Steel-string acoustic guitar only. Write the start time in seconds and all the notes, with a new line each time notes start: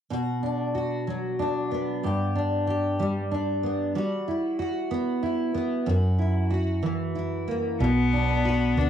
0.10 B2 F#4
0.43 D4
0.75 F#4
1.07 F#3
1.39 D4
1.71 B3
2.03 G2 G4
2.35 D4
2.67 G4
3.00 G3
3.31 D4
3.63 B3
3.95 G3 F#4
4.28 E4
4.59 F#4
4.91 B3
5.23 E4
5.54 B3
5.86 F#2 F#4
6.19 E4
6.51 F#4
6.83 E3
7.15 E4
7.48 A#3
7.80 B2
8.13 D4
8.45 F#4
8.77 B3